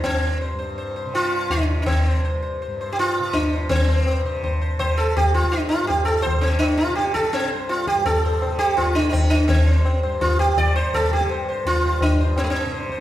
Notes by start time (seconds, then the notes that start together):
Already playing: G2 C3
0.00 C2 C4, tabla na, tabla ge
0.41 C5
0.52 G2
0.59 C5
0.78 C5
0.96 C5
1.05 C3
1.14 F4, tabla na
1.50 D4, tabla tin, tabla ge
1.59 C3
1.82 D4
1.86 C4, tabla na, tabla ge
2.06 C5
2.12 C2
2.25 C5
2.42 C5
2.62 C5
2.67 G2
2.81 C5
2.92 G4
2.97 F4, tabla na
3.19 C3
3.33 D4, tabla tin, tabla ge
3.52 C5
3.69 G2 C4 C5, tabla tin, tabla ge
3.89 C5
4.06 C5, tabla na
4.24 C3 C5
4.43 C5, tabla tin, tabla ge
4.61 C5
4.78 C3 C5, tabla na, tabla ge
4.97 A4
5.17 G4, tabla tin, tabla ge
5.31 C2 F4, tabla na
5.44 tabla ke
5.52 D4, tabla na
5.69 F4
5.83 G2
5.87 G4, tabla tin, tabla ge
6.05 A4, tabla na
6.22 C5
6.27 tabla na, tabla ge
6.37 C3
6.41 C4
6.59 D4, tabla na
6.77 F4
6.89 C3
6.95 G4, tabla te
7.07 tabla te
7.14 A4, tabla ke
7.25 tabla te
7.33 C4, tabla na
7.42 C2
7.53 C5
7.69 F4, tabla na
7.87 G4, tabla ke
7.95 G2
8.05 A4, tabla tin, tabla ge
8.25 C5
8.42 C3 C5, tabla na
8.59 G4
8.77 F4, tabla na, tabla ge
8.95 C3 D4, tabla te
9.09 C4 D4
9.14 tabla na, tabla ge
9.30 D4, tabla te
9.48 C2 C4, tabla tin, tabla ge
9.68 C5
9.85 C5, tabla na
10.03 G2 C5, tabla na
10.21 F4, tabla tin, tabla ge
10.39 G4, tabla na
10.48 tabla ke
10.56 C3 D5, tabla na, tabla ge
10.76 C5, tabla ge
10.94 A4, tabla tin, tabla ge
11.09 C3, tabla na
11.13 G4
11.21 tabla ke
11.30 C5, tabla na
11.49 C5
11.61 C2
11.65 F4, tabla tin, tabla ge
11.83 C5, tabla na
12.01 D4, tabla na, tabla ge
12.12 G2
12.20 C5
12.36 C4, tabla na
12.44 A3
12.50 C4
12.65 C3
12.72 C5, tabla te
12.81 tabla te
12.89 C5, tabla ke